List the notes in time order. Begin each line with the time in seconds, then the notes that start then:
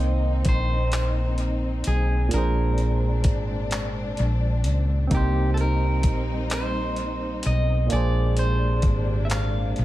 Already playing: C2 D#3 A#3 C4 D#4 C5 D#5 G5
0.45 A#1 C5, kick, closed hi-hat
0.92 clap, closed hi-hat
1.38 closed hi-hat
1.84 B1 G#4, closed hi-hat
2.28 A#2 A#3 D4, closed hi-hat
2.32 A#1 G#3 D4 G#4 A#4
2.38 C5
2.78 closed hi-hat
3.24 G#1, kick, closed hi-hat
3.71 clap, closed hi-hat
4.17 A#1, closed hi-hat
4.64 C#2, closed hi-hat
5.07 G3 A#3 C4 D#4, kick, closed hi-hat
5.12 C2 D#4 G4
5.17 C5
5.54 A4, closed hi-hat
5.61 A#4
6.03 A#1, kick, closed hi-hat
6.50 C5, clap, closed hi-hat
6.96 closed hi-hat
7.43 B1 D#5, closed hi-hat
7.86 A#2 C3 G#3 A#3 D4, closed hi-hat
7.90 A#1 A#3 D4 G#4 D5
7.96 C5
8.37 C5, closed hi-hat
8.82 G#1, kick, closed hi-hat
9.25 E5
9.30 F5, clap, closed hi-hat
9.76 A#1, closed hi-hat